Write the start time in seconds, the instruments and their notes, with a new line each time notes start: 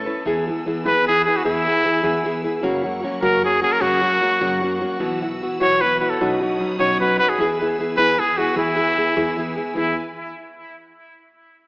Already playing: violin section B4 A5 C#6
0.06 nylon-string guitar C#4 E4 B4
0.25 upright bass E2, nylon-string guitar E3 B3 E4 G#4, violin section B4 G#5 E6
0.48 nylon-string guitar B3 E4 G#4
0.66 nylon-string guitar E3 B3 E4 G#4
0.86 upright bass E2, nylon-string guitar E3 B3 E4 G#4, trumpet B4
1.07 nylon-string guitar E3 B3 E4 G#4, trumpet G#4
1.25 nylon-string guitar B3 E4 G#4, trumpet G#4
1.36 trumpet F#4
1.45 upright bass E2, nylon-string guitar E3 B3 E4 G#4, trumpet E4
1.67 nylon-string guitar B3 E4 G#4
1.85 nylon-string guitar E3 B3 E4 G#4
2.03 upright bass E2, nylon-string guitar E3 B3 E4 G#4
2.25 nylon-string guitar E3 B3 E4 G#4
2.44 nylon-string guitar B3 E4 G#4
2.63 nylon-string guitar F#2 C#3 F#3 A#3 C#4 F#4, upright bass F#2, violin section A#4 F#5 C#6
2.84 nylon-string guitar F#3 A#3 C#4 F#4
3.03 nylon-string guitar F#3 A#3 C#4 F#4
3.22 upright bass F#2, nylon-string guitar F#2 C#3 F#3 A#3 C#4 F#4, trumpet A#4
3.44 nylon-string guitar F#3 A#3 C#4 F#4, trumpet G#4
3.62 nylon-string guitar F#3 A#3 C#4 F#4, trumpet G#4
3.72 trumpet A#4
3.80 nylon-string guitar F#2 C#3 F#3 A#3 C#4 F#4, upright bass F#2, trumpet F#4
4.02 nylon-string guitar F#3 A#3 C#4 F#4
4.21 nylon-string guitar F#3 A#3 C#4 F#4
4.41 upright bass F#2, nylon-string guitar F#2 C#3 F#3 A#3 C#4 F#4
4.62 nylon-string guitar F#3 A#3 C#4 F#4
4.81 nylon-string guitar F#3 A#3 C#4 F#4
5.00 upright bass B1, nylon-string guitar B2 E3 B3 E4 F#4, violin section B4 E6
5.22 nylon-string guitar B3 E4 F#4
5.42 nylon-string guitar E3 B3 E4 F#4
5.61 upright bass B1, nylon-string guitar B2 E3 B3 E4 F#4, trumpet C#5
5.81 nylon-string guitar E3 B3 E4 F#4, trumpet B4
5.99 nylon-string guitar B3 E4 F#4, trumpet B4
6.10 trumpet A4
6.19 upright bass B1, nylon-string guitar B2 F#3 C#4 D#4 F#4, violin section C#5 B5 D#6
6.41 nylon-string guitar C#4 D#4 F#4
6.60 nylon-string guitar F#3 C#4 D#4 F#4
6.79 upright bass B1, nylon-string guitar B2 F#3 C#4 D#4 F#4, trumpet C#5
7.00 nylon-string guitar F#3 C#4 D#4 F#4, trumpet B4
7.18 nylon-string guitar C#4 D#4 F#4, trumpet B4
7.29 trumpet G#4
7.38 upright bass E2, nylon-string guitar E3 B3 E4 G#4, violin section B4 G#5 E6
7.61 nylon-string guitar B3 E4 G#4
7.78 nylon-string guitar E3 B3 E4 G#4
7.97 upright bass E2, nylon-string guitar E3 B3 E4 G#4, trumpet B4
8.19 nylon-string guitar E3 E4 G#4, trumpet G#4
8.37 nylon-string guitar B3 E4 G#4, trumpet F#4
8.56 upright bass E2, nylon-string guitar E3 B3 E4 G#4, trumpet E4
8.77 nylon-string guitar B3 E4 G#4
8.96 nylon-string guitar E3 B3 E4 G#4
9.17 upright bass E2, nylon-string guitar E3 B3 E4 G#4
9.38 nylon-string guitar E3 B3 E4 G#4
9.57 nylon-string guitar B3 E4 G#4
9.75 upright bass E2, nylon-string guitar E3 B3 E4 G#4, trumpet E4, violin section E4 B4 G#5